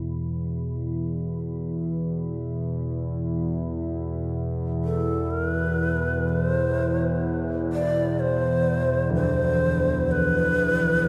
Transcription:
Already playing: E2 B2 E3 E4 B5
4.84 A4
5.31 A#4
5.48 B4
6.29 B4
6.42 C5
7.73 D5
8.20 C5
9.10 D3
9.15 C5
10.11 B4

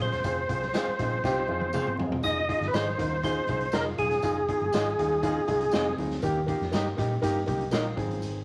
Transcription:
Already playing: F4
0.00 C#4 F4 G#4 C5, closed hi-hat
0.12 E1, snare, closed hi-hat
0.24 F1 C4 F4 G#4, kick, closed hi-hat, tambourine, muted conga, low conga
0.49 C2 C4 F4 G#4, kick, closed hi-hat
0.61 snare, high conga
0.74 C4 F4 G#4 C5 F5, snare, closed hi-hat, tambourine, muted conga
0.85 muted fingered electric bass stroke, high conga
0.99 A#1 C4 D#4 F4 G#4, kick, snare, closed hi-hat, muted conga, low conga
1.23 C2 C4 D#4 F4 G4, kick, snare, tambourine, muted conga
1.48 F2 C4 F4 G#4, muted conga, high conga
1.61 high tom
1.73 C4 F4 G#4 C5 F5, mid tom, tambourine
1.87 mid tom, high conga
1.98 F2 C4 F4 G#4, floor tom, high conga, low conga
2.11 E1, floor tom
2.23 F1 D#4 F4 G#4 D#5, kick, closed hi-hat, tambourine, low conga
2.48 D#4 F4 G#4, kick, closed hi-hat, muted conga
2.61 G1, snare, high conga
2.68 B4
2.73 G#1 D#4 F4 G#4 C5 D#5, snare, closed hi-hat, tambourine, muted conga
2.86 high conga
2.98 D#2 D#4 F4 A#4, kick, closed hi-hat, low conga
3.22 D#4 F4 G#4 C5, kick, closed hi-hat, tambourine, muted conga
3.47 C2 D#4 F4 G#4, kick, closed hi-hat, muted conga, high conga
3.61 closed hi-hat
3.72 F1 D#4 F4 G#4 A#4 C5 D#5, snare, closed hi-hat, tambourine
3.86 high conga
3.98 E1 D#4 F4 G#4, kick, closed hi-hat, muted conga, high conga, low conga
4.11 snare, closed hi-hat
4.22 F1 D#4 F4 G#4, kick, closed hi-hat, tambourine, low conga
4.49 D#4 F4 G#4, kick, closed hi-hat, muted conga
4.61 G1, high conga
4.72 G#1 D#4 F4 G#4 C5 D#5, snare, closed hi-hat, tambourine
4.85 high conga
4.98 D#2 D#4 F4 G#4, closed hi-hat, low conga
5.22 D#4 F4 G#4, kick, closed hi-hat, tambourine, muted conga
5.47 C2 D#4 F4 G#4 D#5, kick, closed hi-hat, high conga
5.61 closed hi-hat
5.72 F1 C4 D#4 F4 G#4 C5 D#5 F5, snare, closed hi-hat, tambourine
5.86 G#5, high conga
5.97 D2 D#4 F4 G#4, closed hi-hat, muted conga, high conga, low conga
6.12 snare, closed hi-hat
6.22 D#2 A#3 D#4 G4, kick, closed hi-hat, tambourine, low conga
6.46 A#3 D#4 F4 G4, kick, closed hi-hat, muted conga
6.60 F2, snare, high conga
6.72 G2 A#3 D#4 G4 A#4 D#5, snare, closed hi-hat, tambourine, muted conga
6.84 high conga
6.97 A#2 A#3 D#4 G4, kick, snare, closed hi-hat, low conga
7.22 G2 A#3 D#4 G4, kick, closed hi-hat, tambourine, muted conga
7.46 C2 A#3 D#4 G4, kick, closed hi-hat, muted conga, high conga
7.61 closed hi-hat
7.71 A#1 A#3 D#4 F4 G4 A#4 D#5, snare, closed hi-hat, tambourine
7.85 high conga
7.96 G#1 C4 D#4 G#4, kick, closed hi-hat, high conga, low conga
8.11 closed hi-hat
8.22 closed hi-hat, tambourine, low conga

